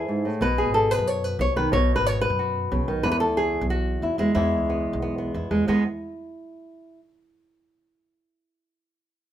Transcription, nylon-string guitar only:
0, 0, Header, 1, 2, 480
1, 0, Start_track
1, 0, Key_signature, 4, "major"
1, 0, Tempo, 328767
1, 604, Time_signature, 4, 2, 24, 8
1, 13609, End_track
2, 0, Start_track
2, 0, Title_t, "Nylon-string guitar"
2, 0, Program_c, 0, 24
2, 0, Note_on_c, 0, 64, 48
2, 0, Note_on_c, 0, 68, 93
2, 122, Note_on_c, 0, 44, 54
2, 363, Note_off_c, 0, 44, 0
2, 366, Note_on_c, 0, 45, 59
2, 605, Note_off_c, 0, 45, 0
2, 606, Note_on_c, 0, 47, 79
2, 608, Note_off_c, 0, 64, 0
2, 610, Note_off_c, 0, 68, 0
2, 613, Note_on_c, 0, 71, 91
2, 849, Note_on_c, 0, 68, 87
2, 1077, Note_off_c, 0, 71, 0
2, 1083, Note_on_c, 0, 69, 96
2, 1329, Note_off_c, 0, 69, 0
2, 1329, Note_on_c, 0, 71, 89
2, 1566, Note_off_c, 0, 68, 0
2, 1568, Note_off_c, 0, 71, 0
2, 1568, Note_on_c, 0, 73, 101
2, 1811, Note_off_c, 0, 73, 0
2, 1811, Note_on_c, 0, 71, 101
2, 2048, Note_off_c, 0, 71, 0
2, 2055, Note_on_c, 0, 73, 107
2, 2280, Note_on_c, 0, 51, 63
2, 2281, Note_off_c, 0, 73, 0
2, 2286, Note_off_c, 0, 47, 0
2, 2287, Note_on_c, 0, 71, 88
2, 2495, Note_off_c, 0, 51, 0
2, 2509, Note_on_c, 0, 47, 82
2, 2519, Note_off_c, 0, 71, 0
2, 2525, Note_on_c, 0, 73, 101
2, 2844, Note_off_c, 0, 73, 0
2, 2857, Note_on_c, 0, 71, 92
2, 3014, Note_off_c, 0, 71, 0
2, 3014, Note_on_c, 0, 73, 107
2, 3227, Note_off_c, 0, 73, 0
2, 3233, Note_on_c, 0, 71, 98
2, 3489, Note_on_c, 0, 66, 48
2, 3967, Note_on_c, 0, 49, 60
2, 4204, Note_on_c, 0, 51, 62
2, 4205, Note_off_c, 0, 49, 0
2, 4408, Note_off_c, 0, 47, 0
2, 4411, Note_off_c, 0, 71, 0
2, 4418, Note_off_c, 0, 66, 0
2, 4429, Note_on_c, 0, 71, 98
2, 4444, Note_off_c, 0, 51, 0
2, 4444, Note_on_c, 0, 40, 86
2, 4531, Note_off_c, 0, 71, 0
2, 4549, Note_on_c, 0, 71, 101
2, 4668, Note_off_c, 0, 71, 0
2, 4674, Note_on_c, 0, 69, 94
2, 4919, Note_off_c, 0, 69, 0
2, 4922, Note_on_c, 0, 68, 102
2, 5398, Note_off_c, 0, 68, 0
2, 5404, Note_on_c, 0, 66, 85
2, 5885, Note_on_c, 0, 64, 47
2, 6112, Note_off_c, 0, 64, 0
2, 6117, Note_on_c, 0, 64, 85
2, 6125, Note_on_c, 0, 56, 62
2, 6329, Note_off_c, 0, 64, 0
2, 6346, Note_on_c, 0, 64, 83
2, 6357, Note_off_c, 0, 40, 0
2, 6362, Note_on_c, 0, 40, 80
2, 6604, Note_off_c, 0, 66, 0
2, 6856, Note_on_c, 0, 59, 48
2, 7315, Note_off_c, 0, 59, 0
2, 7333, Note_on_c, 0, 59, 57
2, 7549, Note_off_c, 0, 59, 0
2, 7566, Note_on_c, 0, 59, 49
2, 7795, Note_off_c, 0, 64, 0
2, 7817, Note_on_c, 0, 64, 47
2, 8037, Note_off_c, 0, 56, 0
2, 8042, Note_on_c, 0, 56, 70
2, 8254, Note_off_c, 0, 56, 0
2, 8267, Note_off_c, 0, 40, 0
2, 8284, Note_off_c, 0, 59, 0
2, 8285, Note_on_c, 0, 40, 67
2, 8296, Note_on_c, 0, 56, 65
2, 8304, Note_on_c, 0, 59, 74
2, 8500, Note_off_c, 0, 40, 0
2, 8506, Note_off_c, 0, 56, 0
2, 8516, Note_off_c, 0, 59, 0
2, 10209, Note_off_c, 0, 64, 0
2, 13609, End_track
0, 0, End_of_file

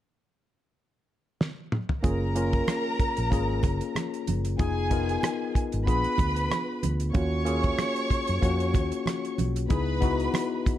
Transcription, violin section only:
0, 0, Header, 1, 2, 480
1, 0, Start_track
1, 0, Key_signature, 6, "major"
1, 0, Tempo, 638978
1, 1535, Time_signature, 4, 2, 24, 8
1, 8100, End_track
2, 0, Start_track
2, 0, Title_t, "Violin section"
2, 0, Program_c, 0, 48
2, 1528, Note_on_c, 0, 70, 72
2, 1533, Note_on_c, 0, 82, 77
2, 3182, Note_off_c, 0, 70, 0
2, 3184, Note_off_c, 0, 82, 0
2, 3452, Note_on_c, 0, 80, 86
2, 3454, Note_on_c, 0, 68, 68
2, 4160, Note_off_c, 0, 80, 0
2, 4161, Note_off_c, 0, 68, 0
2, 4404, Note_on_c, 0, 83, 90
2, 4405, Note_on_c, 0, 71, 75
2, 5116, Note_off_c, 0, 71, 0
2, 5116, Note_off_c, 0, 83, 0
2, 5355, Note_on_c, 0, 73, 84
2, 5357, Note_on_c, 0, 85, 85
2, 7015, Note_off_c, 0, 73, 0
2, 7016, Note_off_c, 0, 85, 0
2, 7285, Note_on_c, 0, 71, 80
2, 7288, Note_on_c, 0, 83, 80
2, 7996, Note_off_c, 0, 71, 0
2, 7997, Note_off_c, 0, 83, 0
2, 8100, End_track
0, 0, End_of_file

